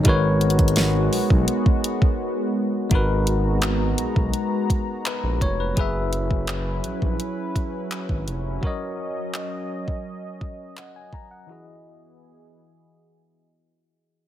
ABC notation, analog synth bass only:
X:1
M:4/4
L:1/16
Q:1/4=84
K:G#m
V:1 name="Analog synth bass" clef=bass
G,,,6 B,,, B,,, z8 | G,,,6 B,,, B,,, z4 z A,,, ^E,,,2 | F,,,6 A,,, A,,, z4 z G,,, ^E,,,2 | z16 |
z16 |]